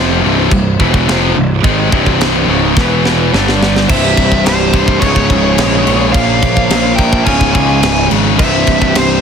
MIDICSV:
0, 0, Header, 1, 7, 480
1, 0, Start_track
1, 0, Tempo, 562852
1, 1399, Time_signature, 4, 2, 24, 8
1, 7855, End_track
2, 0, Start_track
2, 0, Title_t, "Lead electric guitar"
2, 0, Program_c, 0, 29
2, 3327, Note_on_c, 0, 76, 90
2, 3795, Note_on_c, 0, 72, 88
2, 3817, Note_off_c, 0, 76, 0
2, 4263, Note_on_c, 0, 73, 89
2, 4290, Note_off_c, 0, 72, 0
2, 5195, Note_off_c, 0, 73, 0
2, 5223, Note_on_c, 0, 77, 102
2, 5932, Note_on_c, 0, 79, 109
2, 5971, Note_off_c, 0, 77, 0
2, 6179, Note_off_c, 0, 79, 0
2, 6182, Note_on_c, 0, 80, 111
2, 6420, Note_off_c, 0, 80, 0
2, 6430, Note_on_c, 0, 80, 100
2, 6879, Note_off_c, 0, 80, 0
2, 7159, Note_on_c, 0, 76, 91
2, 7648, Note_on_c, 0, 72, 89
2, 7652, Note_off_c, 0, 76, 0
2, 7855, Note_off_c, 0, 72, 0
2, 7855, End_track
3, 0, Start_track
3, 0, Title_t, "Lead electric guitar"
3, 0, Program_c, 1, 29
3, 3307, Note_on_c, 1, 72, 84
3, 3758, Note_off_c, 1, 72, 0
3, 3771, Note_on_c, 1, 67, 82
3, 4230, Note_off_c, 1, 67, 0
3, 4263, Note_on_c, 1, 68, 73
3, 5195, Note_off_c, 1, 68, 0
3, 5205, Note_on_c, 1, 73, 93
3, 5906, Note_off_c, 1, 73, 0
3, 5937, Note_on_c, 1, 76, 86
3, 6166, Note_off_c, 1, 76, 0
3, 6169, Note_on_c, 1, 77, 90
3, 6405, Note_off_c, 1, 77, 0
3, 6419, Note_on_c, 1, 77, 84
3, 6873, Note_off_c, 1, 77, 0
3, 7143, Note_on_c, 1, 72, 86
3, 7596, Note_off_c, 1, 72, 0
3, 7629, Note_on_c, 1, 67, 80
3, 7855, Note_off_c, 1, 67, 0
3, 7855, End_track
4, 0, Start_track
4, 0, Title_t, "String section"
4, 0, Program_c, 2, 48
4, 0, Note_on_c, 2, 48, 78
4, 0, Note_on_c, 2, 55, 72
4, 0, Note_on_c, 2, 64, 74
4, 0, Note_on_c, 2, 72, 81
4, 2322, Note_off_c, 2, 72, 0
4, 2325, Note_off_c, 2, 55, 0
4, 2327, Note_off_c, 2, 48, 0
4, 2349, Note_on_c, 2, 47, 70
4, 2349, Note_on_c, 2, 52, 67
4, 2356, Note_on_c, 2, 71, 77
4, 2803, Note_off_c, 2, 64, 0
4, 2825, Note_on_c, 2, 55, 58
4, 2827, Note_on_c, 2, 67, 66
4, 2828, Note_on_c, 2, 50, 65
4, 2829, Note_off_c, 2, 47, 0
4, 2829, Note_off_c, 2, 52, 0
4, 2831, Note_on_c, 2, 74, 78
4, 2833, Note_off_c, 2, 71, 0
4, 3307, Note_off_c, 2, 55, 0
4, 3308, Note_off_c, 2, 67, 0
4, 3309, Note_off_c, 2, 50, 0
4, 3310, Note_off_c, 2, 74, 0
4, 3321, Note_on_c, 2, 55, 68
4, 3321, Note_on_c, 2, 64, 67
4, 3323, Note_on_c, 2, 48, 80
4, 3324, Note_on_c, 2, 72, 84
4, 4269, Note_off_c, 2, 55, 0
4, 4269, Note_off_c, 2, 64, 0
4, 4270, Note_off_c, 2, 48, 0
4, 4271, Note_off_c, 2, 72, 0
4, 4295, Note_on_c, 2, 65, 71
4, 4299, Note_on_c, 2, 68, 85
4, 4303, Note_on_c, 2, 49, 78
4, 4303, Note_on_c, 2, 56, 72
4, 5238, Note_off_c, 2, 68, 0
4, 5240, Note_off_c, 2, 56, 0
4, 5242, Note_on_c, 2, 70, 85
4, 5247, Note_on_c, 2, 58, 70
4, 6189, Note_off_c, 2, 70, 0
4, 6192, Note_off_c, 2, 58, 0
4, 6210, Note_on_c, 2, 68, 87
4, 6212, Note_on_c, 2, 56, 75
4, 7135, Note_off_c, 2, 65, 0
4, 7140, Note_off_c, 2, 49, 0
4, 7147, Note_on_c, 2, 64, 77
4, 7149, Note_on_c, 2, 67, 89
4, 7150, Note_on_c, 2, 55, 71
4, 7153, Note_off_c, 2, 68, 0
4, 7154, Note_off_c, 2, 56, 0
4, 7155, Note_on_c, 2, 48, 78
4, 7855, Note_off_c, 2, 48, 0
4, 7855, Note_off_c, 2, 55, 0
4, 7855, Note_off_c, 2, 64, 0
4, 7855, Note_off_c, 2, 67, 0
4, 7855, End_track
5, 0, Start_track
5, 0, Title_t, "Distorted electric guitar"
5, 0, Program_c, 3, 30
5, 0, Note_on_c, 3, 41, 97
5, 0, Note_on_c, 3, 48, 91
5, 0, Note_on_c, 3, 53, 98
5, 188, Note_off_c, 3, 41, 0
5, 190, Note_off_c, 3, 48, 0
5, 192, Note_on_c, 3, 36, 96
5, 193, Note_off_c, 3, 53, 0
5, 201, Note_on_c, 3, 43, 102
5, 205, Note_on_c, 3, 48, 109
5, 427, Note_off_c, 3, 36, 0
5, 432, Note_off_c, 3, 43, 0
5, 434, Note_off_c, 3, 48, 0
5, 442, Note_on_c, 3, 36, 69
5, 445, Note_on_c, 3, 43, 78
5, 632, Note_off_c, 3, 36, 0
5, 633, Note_off_c, 3, 43, 0
5, 678, Note_on_c, 3, 40, 87
5, 685, Note_on_c, 3, 47, 94
5, 691, Note_on_c, 3, 52, 103
5, 911, Note_off_c, 3, 40, 0
5, 914, Note_off_c, 3, 47, 0
5, 917, Note_off_c, 3, 52, 0
5, 917, Note_on_c, 3, 41, 94
5, 922, Note_on_c, 3, 48, 97
5, 930, Note_on_c, 3, 53, 99
5, 1151, Note_off_c, 3, 41, 0
5, 1153, Note_off_c, 3, 48, 0
5, 1157, Note_off_c, 3, 53, 0
5, 1163, Note_on_c, 3, 36, 75
5, 1169, Note_on_c, 3, 43, 75
5, 1353, Note_off_c, 3, 36, 0
5, 1356, Note_off_c, 3, 43, 0
5, 1394, Note_on_c, 3, 44, 97
5, 1400, Note_on_c, 3, 51, 107
5, 1407, Note_on_c, 3, 56, 105
5, 1629, Note_off_c, 3, 44, 0
5, 1632, Note_off_c, 3, 51, 0
5, 1636, Note_off_c, 3, 56, 0
5, 1639, Note_on_c, 3, 36, 94
5, 1640, Note_on_c, 3, 43, 101
5, 1649, Note_on_c, 3, 48, 107
5, 2112, Note_off_c, 3, 36, 0
5, 2113, Note_off_c, 3, 43, 0
5, 2117, Note_off_c, 3, 48, 0
5, 2122, Note_on_c, 3, 37, 102
5, 2131, Note_on_c, 3, 44, 98
5, 2134, Note_on_c, 3, 49, 100
5, 2353, Note_off_c, 3, 37, 0
5, 2357, Note_on_c, 3, 40, 112
5, 2358, Note_off_c, 3, 44, 0
5, 2360, Note_off_c, 3, 49, 0
5, 2361, Note_on_c, 3, 47, 91
5, 2366, Note_on_c, 3, 52, 112
5, 2831, Note_off_c, 3, 40, 0
5, 2833, Note_off_c, 3, 47, 0
5, 2835, Note_off_c, 3, 52, 0
5, 2837, Note_on_c, 3, 43, 91
5, 2842, Note_on_c, 3, 50, 97
5, 2846, Note_on_c, 3, 55, 89
5, 3310, Note_off_c, 3, 43, 0
5, 3313, Note_off_c, 3, 50, 0
5, 3315, Note_off_c, 3, 55, 0
5, 3315, Note_on_c, 3, 36, 94
5, 3332, Note_on_c, 3, 43, 95
5, 3345, Note_on_c, 3, 48, 101
5, 4019, Note_off_c, 3, 48, 0
5, 4022, Note_off_c, 3, 36, 0
5, 4029, Note_on_c, 3, 48, 90
5, 4030, Note_off_c, 3, 43, 0
5, 4046, Note_on_c, 3, 43, 78
5, 4060, Note_on_c, 3, 36, 75
5, 4259, Note_off_c, 3, 48, 0
5, 4267, Note_off_c, 3, 43, 0
5, 4271, Note_off_c, 3, 36, 0
5, 4274, Note_on_c, 3, 37, 104
5, 4291, Note_on_c, 3, 44, 95
5, 4304, Note_on_c, 3, 49, 104
5, 4981, Note_off_c, 3, 37, 0
5, 4989, Note_off_c, 3, 44, 0
5, 4989, Note_off_c, 3, 49, 0
5, 4999, Note_on_c, 3, 49, 90
5, 5017, Note_on_c, 3, 44, 86
5, 5028, Note_on_c, 3, 37, 69
5, 5223, Note_off_c, 3, 49, 0
5, 5232, Note_off_c, 3, 37, 0
5, 5232, Note_off_c, 3, 44, 0
5, 5236, Note_on_c, 3, 46, 94
5, 5251, Note_on_c, 3, 53, 97
5, 5264, Note_on_c, 3, 58, 102
5, 5941, Note_off_c, 3, 46, 0
5, 5949, Note_off_c, 3, 53, 0
5, 5949, Note_off_c, 3, 58, 0
5, 5959, Note_on_c, 3, 58, 91
5, 5973, Note_on_c, 3, 53, 91
5, 5989, Note_on_c, 3, 46, 78
5, 6183, Note_off_c, 3, 58, 0
5, 6190, Note_off_c, 3, 53, 0
5, 6192, Note_off_c, 3, 46, 0
5, 6195, Note_on_c, 3, 37, 99
5, 6210, Note_on_c, 3, 44, 116
5, 6223, Note_on_c, 3, 49, 108
5, 6901, Note_off_c, 3, 37, 0
5, 6902, Note_off_c, 3, 49, 0
5, 6908, Note_off_c, 3, 44, 0
5, 6912, Note_on_c, 3, 49, 94
5, 6926, Note_on_c, 3, 44, 88
5, 6939, Note_on_c, 3, 37, 76
5, 7140, Note_off_c, 3, 49, 0
5, 7145, Note_off_c, 3, 37, 0
5, 7147, Note_off_c, 3, 44, 0
5, 7149, Note_on_c, 3, 36, 95
5, 7164, Note_on_c, 3, 43, 99
5, 7174, Note_on_c, 3, 48, 101
5, 7855, Note_off_c, 3, 36, 0
5, 7855, Note_off_c, 3, 43, 0
5, 7855, Note_off_c, 3, 48, 0
5, 7855, End_track
6, 0, Start_track
6, 0, Title_t, "Picked electric bass"
6, 0, Program_c, 4, 34
6, 0, Note_on_c, 4, 29, 98
6, 178, Note_off_c, 4, 29, 0
6, 203, Note_on_c, 4, 24, 92
6, 424, Note_off_c, 4, 24, 0
6, 441, Note_on_c, 4, 24, 86
6, 663, Note_off_c, 4, 24, 0
6, 682, Note_on_c, 4, 28, 98
6, 903, Note_off_c, 4, 28, 0
6, 926, Note_on_c, 4, 29, 98
6, 1146, Note_off_c, 4, 29, 0
6, 1161, Note_on_c, 4, 24, 75
6, 1383, Note_off_c, 4, 24, 0
6, 1405, Note_on_c, 4, 32, 90
6, 1625, Note_off_c, 4, 32, 0
6, 1641, Note_on_c, 4, 24, 87
6, 2086, Note_off_c, 4, 24, 0
6, 2112, Note_on_c, 4, 25, 98
6, 2339, Note_off_c, 4, 25, 0
6, 2365, Note_on_c, 4, 28, 98
6, 2808, Note_off_c, 4, 28, 0
6, 2842, Note_on_c, 4, 31, 102
6, 3287, Note_off_c, 4, 31, 0
6, 3325, Note_on_c, 4, 24, 83
6, 3542, Note_off_c, 4, 24, 0
6, 3559, Note_on_c, 4, 24, 87
6, 3778, Note_off_c, 4, 24, 0
6, 3793, Note_on_c, 4, 24, 91
6, 4015, Note_off_c, 4, 24, 0
6, 4041, Note_on_c, 4, 24, 93
6, 4259, Note_off_c, 4, 24, 0
6, 4281, Note_on_c, 4, 25, 88
6, 4499, Note_off_c, 4, 25, 0
6, 4525, Note_on_c, 4, 25, 89
6, 4741, Note_off_c, 4, 25, 0
6, 4759, Note_on_c, 4, 34, 91
6, 4977, Note_off_c, 4, 34, 0
6, 5006, Note_on_c, 4, 34, 86
6, 5222, Note_off_c, 4, 34, 0
6, 5242, Note_on_c, 4, 34, 90
6, 5459, Note_off_c, 4, 34, 0
6, 5482, Note_on_c, 4, 34, 84
6, 5699, Note_off_c, 4, 34, 0
6, 5716, Note_on_c, 4, 34, 95
6, 5936, Note_off_c, 4, 34, 0
6, 5959, Note_on_c, 4, 34, 100
6, 6177, Note_off_c, 4, 34, 0
6, 6200, Note_on_c, 4, 25, 92
6, 6418, Note_off_c, 4, 25, 0
6, 6441, Note_on_c, 4, 37, 80
6, 6658, Note_off_c, 4, 37, 0
6, 6668, Note_on_c, 4, 25, 94
6, 6891, Note_off_c, 4, 25, 0
6, 6918, Note_on_c, 4, 32, 84
6, 7137, Note_off_c, 4, 32, 0
6, 7160, Note_on_c, 4, 24, 89
6, 7378, Note_off_c, 4, 24, 0
6, 7398, Note_on_c, 4, 24, 87
6, 7617, Note_off_c, 4, 24, 0
6, 7646, Note_on_c, 4, 24, 92
6, 7855, Note_off_c, 4, 24, 0
6, 7855, End_track
7, 0, Start_track
7, 0, Title_t, "Drums"
7, 439, Note_on_c, 9, 36, 109
7, 441, Note_on_c, 9, 52, 60
7, 524, Note_off_c, 9, 36, 0
7, 526, Note_off_c, 9, 52, 0
7, 681, Note_on_c, 9, 36, 83
7, 766, Note_off_c, 9, 36, 0
7, 802, Note_on_c, 9, 36, 84
7, 887, Note_off_c, 9, 36, 0
7, 927, Note_on_c, 9, 52, 64
7, 933, Note_on_c, 9, 38, 112
7, 1012, Note_off_c, 9, 52, 0
7, 1018, Note_off_c, 9, 38, 0
7, 1401, Note_on_c, 9, 36, 122
7, 1401, Note_on_c, 9, 52, 62
7, 1486, Note_off_c, 9, 36, 0
7, 1486, Note_off_c, 9, 52, 0
7, 1641, Note_on_c, 9, 36, 94
7, 1726, Note_off_c, 9, 36, 0
7, 1761, Note_on_c, 9, 36, 81
7, 1846, Note_off_c, 9, 36, 0
7, 1883, Note_on_c, 9, 52, 68
7, 1889, Note_on_c, 9, 38, 116
7, 1968, Note_off_c, 9, 52, 0
7, 1974, Note_off_c, 9, 38, 0
7, 2360, Note_on_c, 9, 36, 113
7, 2367, Note_on_c, 9, 38, 68
7, 2445, Note_off_c, 9, 36, 0
7, 2453, Note_off_c, 9, 38, 0
7, 2605, Note_on_c, 9, 38, 83
7, 2690, Note_off_c, 9, 38, 0
7, 2851, Note_on_c, 9, 38, 84
7, 2937, Note_off_c, 9, 38, 0
7, 2972, Note_on_c, 9, 38, 82
7, 3057, Note_off_c, 9, 38, 0
7, 3092, Note_on_c, 9, 38, 107
7, 3177, Note_off_c, 9, 38, 0
7, 3210, Note_on_c, 9, 38, 92
7, 3295, Note_off_c, 9, 38, 0
7, 3322, Note_on_c, 9, 36, 120
7, 3322, Note_on_c, 9, 49, 123
7, 3322, Note_on_c, 9, 57, 84
7, 3407, Note_off_c, 9, 36, 0
7, 3407, Note_off_c, 9, 49, 0
7, 3407, Note_off_c, 9, 57, 0
7, 3560, Note_on_c, 9, 36, 89
7, 3560, Note_on_c, 9, 57, 61
7, 3645, Note_off_c, 9, 36, 0
7, 3645, Note_off_c, 9, 57, 0
7, 3681, Note_on_c, 9, 36, 77
7, 3766, Note_off_c, 9, 36, 0
7, 3804, Note_on_c, 9, 57, 82
7, 3810, Note_on_c, 9, 38, 121
7, 3889, Note_off_c, 9, 57, 0
7, 3895, Note_off_c, 9, 38, 0
7, 4038, Note_on_c, 9, 57, 59
7, 4039, Note_on_c, 9, 36, 85
7, 4124, Note_off_c, 9, 36, 0
7, 4124, Note_off_c, 9, 57, 0
7, 4160, Note_on_c, 9, 36, 98
7, 4245, Note_off_c, 9, 36, 0
7, 4281, Note_on_c, 9, 36, 99
7, 4283, Note_on_c, 9, 57, 80
7, 4366, Note_off_c, 9, 36, 0
7, 4368, Note_off_c, 9, 57, 0
7, 4400, Note_on_c, 9, 36, 85
7, 4486, Note_off_c, 9, 36, 0
7, 4519, Note_on_c, 9, 57, 60
7, 4520, Note_on_c, 9, 36, 83
7, 4604, Note_off_c, 9, 57, 0
7, 4605, Note_off_c, 9, 36, 0
7, 4759, Note_on_c, 9, 57, 88
7, 4765, Note_on_c, 9, 38, 115
7, 4844, Note_off_c, 9, 57, 0
7, 4850, Note_off_c, 9, 38, 0
7, 5004, Note_on_c, 9, 57, 63
7, 5090, Note_off_c, 9, 57, 0
7, 5240, Note_on_c, 9, 36, 118
7, 5240, Note_on_c, 9, 57, 92
7, 5325, Note_off_c, 9, 36, 0
7, 5325, Note_off_c, 9, 57, 0
7, 5480, Note_on_c, 9, 36, 87
7, 5480, Note_on_c, 9, 57, 68
7, 5565, Note_off_c, 9, 36, 0
7, 5565, Note_off_c, 9, 57, 0
7, 5601, Note_on_c, 9, 36, 86
7, 5686, Note_off_c, 9, 36, 0
7, 5717, Note_on_c, 9, 57, 96
7, 5723, Note_on_c, 9, 38, 118
7, 5802, Note_off_c, 9, 57, 0
7, 5808, Note_off_c, 9, 38, 0
7, 5954, Note_on_c, 9, 57, 61
7, 5958, Note_on_c, 9, 36, 91
7, 6039, Note_off_c, 9, 57, 0
7, 6043, Note_off_c, 9, 36, 0
7, 6078, Note_on_c, 9, 36, 99
7, 6163, Note_off_c, 9, 36, 0
7, 6194, Note_on_c, 9, 57, 86
7, 6197, Note_on_c, 9, 36, 100
7, 6279, Note_off_c, 9, 57, 0
7, 6283, Note_off_c, 9, 36, 0
7, 6318, Note_on_c, 9, 36, 89
7, 6403, Note_off_c, 9, 36, 0
7, 6436, Note_on_c, 9, 57, 68
7, 6438, Note_on_c, 9, 36, 91
7, 6521, Note_off_c, 9, 57, 0
7, 6524, Note_off_c, 9, 36, 0
7, 6676, Note_on_c, 9, 57, 93
7, 6682, Note_on_c, 9, 38, 119
7, 6761, Note_off_c, 9, 57, 0
7, 6767, Note_off_c, 9, 38, 0
7, 6916, Note_on_c, 9, 57, 69
7, 7001, Note_off_c, 9, 57, 0
7, 7156, Note_on_c, 9, 57, 93
7, 7158, Note_on_c, 9, 36, 121
7, 7242, Note_off_c, 9, 57, 0
7, 7243, Note_off_c, 9, 36, 0
7, 7391, Note_on_c, 9, 57, 63
7, 7397, Note_on_c, 9, 36, 86
7, 7477, Note_off_c, 9, 57, 0
7, 7483, Note_off_c, 9, 36, 0
7, 7518, Note_on_c, 9, 36, 84
7, 7604, Note_off_c, 9, 36, 0
7, 7635, Note_on_c, 9, 57, 86
7, 7641, Note_on_c, 9, 38, 122
7, 7720, Note_off_c, 9, 57, 0
7, 7726, Note_off_c, 9, 38, 0
7, 7855, End_track
0, 0, End_of_file